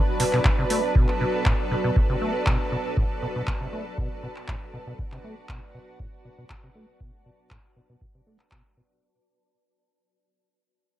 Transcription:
Already playing: F#3 B3 D4 F#4 B4 D5 A5
0.20 B2, open hi-hat
0.33 B2, clap
0.45 B2, kick, clap
0.58 C3
0.70 A3, open hi-hat
0.95 B2 A4, kick
1.09 clap
1.21 B2
1.46 A2, kick, clap
1.71 B2
1.84 B2
1.96 B2, kick
2.10 C3
2.22 A3
2.47 B2, kick, clap
2.72 B2
2.97 A2, kick
3.22 B2
3.36 B2
3.47 B2, kick, clap
3.61 C3
3.73 A3
3.98 B2, kick
4.23 B2
4.36 clap
4.48 A2, kick, clap
4.74 B2
4.87 B2
4.99 B2 F#4, kick
5.12 C3, clap
5.24 A3
5.49 B2, kick, clap
5.74 B2
6.00 A2, kick
6.25 B2
6.38 B2
6.50 B2, kick, clap
6.63 C3
6.75 A3
7.00 B2, kick
7.26 B2
7.51 A2, kick, clap
7.76 B2
7.89 B2
8.01 B2, kick
8.15 C3
8.27 A3
8.40 clap
8.52 B2, kick, clap
8.77 B2

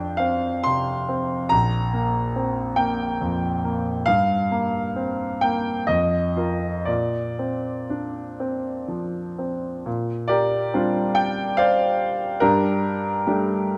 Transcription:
Already playing: F2 C4 D4 G5
0.17 C4 F5
0.63 C3 C6
1.09 C4
1.49 A#1 A#5
1.93 A#3
2.36 C4
2.76 A#3 G5
3.21 F2
3.64 A#3
4.06 G2 F5
4.51 A#3
4.96 C4
5.41 A#3 G5
5.87 F2 D#5
6.36 F4 A#4
6.85 A#2 D5
7.39 C4
7.90 D4
8.40 C4
8.88 F3
9.39 C4
9.86 A#2
10.28 G4 A#4 D5
10.74 G3 C4 D4 F4
11.15 G5
11.57 C5 D5 F5
12.40 G2 D4 G4 A#4
13.27 G3 A3 D4 G4

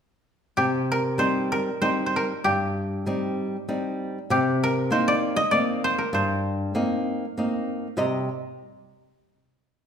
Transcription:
0.57 C3 G4
0.92 A#4
1.18 G3 C4 D#4 C5
1.52 A#4
1.82 G3 C4 D#4 C5
2.06 C5
2.16 A#4
2.44 G2 G4
3.06 G3 C4 D#4
3.69 G3 C4 D#4
4.30 C3 G4
4.63 A#4
4.91 A#3 C4 D#4 C5
5.08 D5
5.36 D#5
5.51 A#3 C4 D#4 D5
5.84 C5
5.98 A#4
6.13 G2 C5
6.75 A#3 C4 D#4
7.38 A#3 C4 D#4
7.97 C3 G3 G4 C5 D#5 A#5

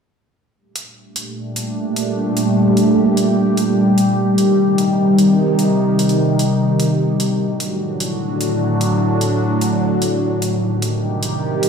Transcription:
0.55 A#2 G3 A3 D4 G4
0.76 closed hi-hat
1.16 closed hi-hat
1.56 closed hi-hat
1.96 closed hi-hat
2.37 closed hi-hat
2.77 closed hi-hat
3.17 closed hi-hat
3.57 closed hi-hat
3.78 C3 D#3 D#4
3.98 closed hi-hat
4.38 closed hi-hat
4.78 closed hi-hat
5.18 closed hi-hat
5.59 closed hi-hat
5.99 closed hi-hat
6.09 closed hi-hat
6.39 closed hi-hat
6.80 closed hi-hat
7.00 A2 D3 F#3 D4 F#4
7.20 closed hi-hat
7.60 closed hi-hat
8.00 closed hi-hat
8.41 closed hi-hat
8.81 closed hi-hat
9.21 closed hi-hat
9.61 closed hi-hat
10.02 closed hi-hat
10.22 C3 D#3 G3 D#4 G4
10.42 closed hi-hat
10.82 closed hi-hat
11.23 closed hi-hat
11.63 closed hi-hat

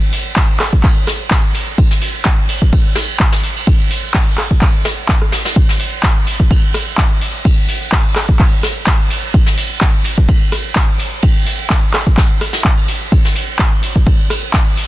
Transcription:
0.13 open hi-hat, ride
0.36 kick, snare, clap, ride
0.60 cross-stick, clap, open hi-hat, ride
0.73 kick
0.83 kick, clap, ride
1.07 cross-stick, snare, open hi-hat, ride
1.31 kick, snare, clap, ride
1.54 open hi-hat, ride
1.78 kick, ride
1.91 snare
2.01 open hi-hat, ride
2.24 kick, snare, clap, ride
2.49 open hi-hat, ride
2.62 kick
2.72 kick, ride
2.95 cross-stick, snare, open hi-hat, ride
3.20 kick, clap
3.32 snare, ride
3.44 open hi-hat
3.56 ride
3.67 kick, ride
3.90 open hi-hat, ride
4.14 kick, snare, clap, ride
4.38 cross-stick, clap, open hi-hat, ride
4.51 kick
4.61 kick, clap, ride
4.85 cross-stick, snare, open hi-hat, ride
5.09 kick, snare, clap, ride
5.22 cross-stick
5.32 snare, open hi-hat, ride
5.45 snare, ride
5.56 kick, ride
5.69 snare
5.80 open hi-hat, ride
6.03 kick, snare, clap, ride
6.27 open hi-hat, ride
6.40 kick
6.51 kick, ride
6.74 cross-stick, open hi-hat, ride
6.98 kick, snare, clap, ride
7.21 open hi-hat
7.45 kick, ride
7.69 open hi-hat, ride
7.92 kick, snare, clap, ride
8.16 cross-stick, clap, open hi-hat, ride
8.29 kick
8.39 kick, clap, ride
8.63 cross-stick, snare, open hi-hat, ride
8.86 kick, snare, clap, ride
9.10 open hi-hat, ride
9.34 kick, ride
9.46 snare
9.58 open hi-hat, ride
9.81 kick, snare, clap, ride
10.04 open hi-hat, ride
10.18 kick
10.28 kick, ride
10.52 cross-stick, open hi-hat, ride
10.75 kick, snare, clap, ride
10.99 open hi-hat
11.23 kick, ride
11.46 open hi-hat, ride
11.70 kick, snare, clap, ride
11.94 cross-stick, clap, open hi-hat, ride
12.07 kick
12.17 kick, snare, clap, ride
12.41 cross-stick, open hi-hat, ride
12.53 snare, ride
12.64 kick, clap
12.77 ride
12.88 open hi-hat, ride
13.12 kick, ride
13.25 snare
13.36 open hi-hat, ride
13.59 kick, snare, clap, ride
13.83 open hi-hat, ride
13.96 kick
14.07 kick, ride
14.30 cross-stick, open hi-hat, ride
14.53 kick, snare, clap, ride
14.77 open hi-hat

